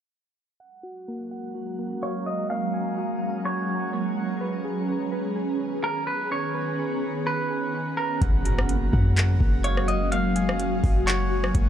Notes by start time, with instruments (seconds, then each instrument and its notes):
0.60 ambient pad F#3 G#3 C#4 F#4 A#5, synth keys F#5
0.83 synth keys F#4
1.08 synth keys A#3
1.31 synth keys F#5
1.55 synth keys F#4
1.79 synth keys A#3
2.02 clean electric guitar C#5, synth keys F5
2.26 clean electric guitar D#5
2.50 synth keys A#3, ambient pad G#4, clean electric guitar F5
2.74 synth keys G#5
2.98 synth keys F#4
3.45 clean electric guitar C#5, synth keys F#5
3.69 synth keys F#4
3.93 synth keys A#3
4.17 synth keys F#5
4.41 ambient pad D#3 B3, synth keys B4
4.64 synth keys G#4
4.89 synth keys C#4
5.12 synth keys B4
5.36 synth keys G#4
5.60 synth keys C#4
5.84 clean electric guitar A#4, synth keys B4
6.07 clean electric guitar B4
6.31 synth keys C#4, clean electric guitar C#5
6.54 synth keys B4
6.79 synth keys G#4
7.26 synth keys B4, clean electric guitar B4
7.50 synth keys G#4
7.74 synth keys C#4
7.97 clean electric guitar A#4, synth keys B4
8.21 808-style bass F#1, ambient pad F#3 G#3 C#4 F#4, synth keys F#5, kick, closed hi-hat, impact
8.45 synth keys F#4, closed hi-hat
8.58 cross-stick
8.69 synth keys A#3, closed hi-hat
8.93 808-style bass F#2, synth keys F#5, kick
9.17 synth keys F#4, clap, closed hi-hat
9.40 808-style bass F#1, synth keys A#3, kick
9.64 clean electric guitar C#5, synth keys F5, closed hi-hat
9.77 cross-stick
9.88 clean electric guitar D#5, closed hi-hat
10.12 synth keys A#3, ambient pad D#4, clean electric guitar F5, closed hi-hat
10.36 synth keys G#5, closed hi-hat
10.48 808-style bass F1, cross-stick
10.59 synth keys F#4, closed hi-hat
10.84 808-style bass F#1, kick, open hi-hat
11.07 clean electric guitar C#5, synth keys F#5, clap, closed hi-hat
11.31 synth keys F#4
11.44 cross-stick
11.55 808-style bass F#1, synth keys A#3, kick, closed hi-hat